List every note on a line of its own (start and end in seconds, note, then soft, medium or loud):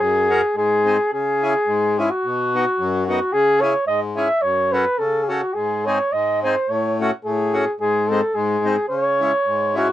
0.00 0.42 F#2 medium
0.00 0.55 G#4 loud
0.30 0.41 C#4 medium
0.30 0.41 F#4 medium
0.30 0.41 A#4 medium
0.55 0.98 G#2 medium
0.55 1.09 G#4 medium
0.85 0.97 C4 medium
0.85 0.97 D#4 soft
0.85 0.98 G#4 medium
1.12 1.54 C#3 soft
1.12 2.01 G#4 medium
1.42 1.54 C#4 medium
1.42 1.54 E4 medium
1.42 1.54 G#4 medium
1.67 2.09 G#2 medium
1.98 2.09 C#4 soft
1.98 2.09 E4 soft
1.98 2.12 E4 medium
1.98 2.09 G#4 medium
2.10 3.06 F#4 medium
2.25 2.66 B2 medium
2.54 2.65 B3 medium
2.54 2.65 D#4 medium
2.54 2.65 F#4 medium
2.79 3.20 F#2 medium
3.07 3.19 B3 medium
3.07 3.20 D#4 medium
3.07 3.34 F#4 medium
3.07 3.19 F#4 medium
3.33 3.75 C#3 medium
3.33 3.62 G#4 loud
3.61 3.74 C#4 medium
3.61 3.74 E4 medium
3.61 3.74 G#4 medium
3.61 3.86 C#5 medium
3.87 4.29 G#2 medium
3.87 4.00 D#5 medium
4.16 4.28 C#4 medium
4.16 4.28 E4 medium
4.16 4.28 G#4 medium
4.16 4.43 E5 medium
4.42 4.85 F#2 medium
4.42 4.74 C#5 loud
4.72 4.85 C#4 medium
4.72 4.85 F#4 medium
4.72 4.85 A4 medium
4.72 5.00 B4 medium
4.98 5.43 C#3 medium
4.98 5.25 A4 medium
5.23 5.30 G#4 medium
5.29 5.41 C#4 medium
5.29 5.55 F#4 medium
5.29 5.41 F#4 soft
5.29 5.41 A4 medium
5.54 5.99 G#2 medium
5.54 5.87 G#4 medium
5.85 5.99 C4 medium
5.85 5.99 D#4 medium
5.85 5.99 G#4 medium
5.85 6.14 C#5 medium
6.12 6.55 G#2 medium
6.12 6.42 D#5 medium
6.43 6.55 C4 medium
6.43 6.55 D#4 medium
6.43 6.55 G#4 medium
6.43 6.71 C5 medium
6.69 7.11 A2 medium
6.69 6.99 C#5 medium
7.00 7.11 A3 medium
7.00 7.11 C#4 medium
7.00 7.11 F#4 medium
7.25 7.66 A2 medium
7.25 7.76 G#4 medium
7.53 7.65 A3 medium
7.53 7.65 C#4 soft
7.53 7.65 F#4 medium
7.80 8.21 G#2 medium
7.80 8.09 G#4 medium
8.08 8.21 G#3 medium
8.08 8.21 C4 medium
8.08 8.21 D#4 medium
8.08 8.36 A4 medium
8.35 8.77 G#2 medium
8.35 8.88 G#4 medium
8.65 8.76 G#3 medium
8.65 8.76 C4 soft
8.65 8.76 D#4 medium
8.89 9.32 C#3 medium
8.89 9.73 C#5 loud
9.20 9.32 G#3 medium
9.20 9.32 C#4 medium
9.20 9.32 E4 medium
9.46 9.89 G#2 medium
9.74 9.87 G#3 medium
9.74 9.88 C#4 medium
9.74 9.88 E4 medium
9.74 9.92 F#4 medium